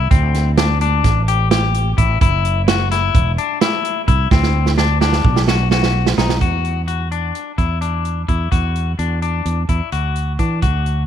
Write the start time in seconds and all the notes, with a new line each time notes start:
0.11 D2 C4, kick, closed hi-hat
0.34 snare, closed hi-hat
0.58 D4, snare, closed hi-hat
0.81 D4, closed hi-hat
1.04 A1, kick, snare, closed hi-hat
1.28 G4, closed hi-hat
1.51 G4, snare, closed hi-hat
1.74 closed hi-hat
1.98 A1 E4, kick, closed hi-hat
2.21 F#1 E4, kick, closed hi-hat
2.45 closed hi-hat
2.68 F#4, snare, closed hi-hat
2.92 E4, snare, closed hi-hat
3.15 E1, kick, closed hi-hat
3.38 D4, closed hi-hat
3.61 E4, snare, closed hi-hat
3.85 closed hi-hat
4.08 C2 E4, kick, closed hi-hat
4.31 D2 C4, kick, snare
4.43 snare
4.66 snare
4.78 D4, snare
5.01 D4, snare
5.13 snare
5.25 B1, kick
5.36 snare
5.48 F#4, snare
5.71 F#4, snare
5.83 snare
6.06 snare
6.18 B1 D#4, snare
6.29 snare
6.41 E2 F#4, kick, closed hi-hat
6.65 closed hi-hat
6.88 F#4, closed hi-hat
7.12 D4, closed hi-hat
7.35 closed hi-hat
7.58 E2 E4, kick, closed hi-hat
7.81 D4, closed hi-hat
8.05 closed hi-hat
8.28 E2 E4, kick, closed hi-hat
8.52 E2 F#4, kick, closed hi-hat
8.76 closed hi-hat
8.99 E2 D4, closed hi-hat
9.22 D4, closed hi-hat
9.45 E2, closed hi-hat
9.69 E2 E4, kick, closed hi-hat
9.92 D2 F#4, closed hi-hat
10.16 closed hi-hat
10.39 E3 D4, kick, closed hi-hat
10.62 D2 F#4, kick, closed hi-hat
10.86 closed hi-hat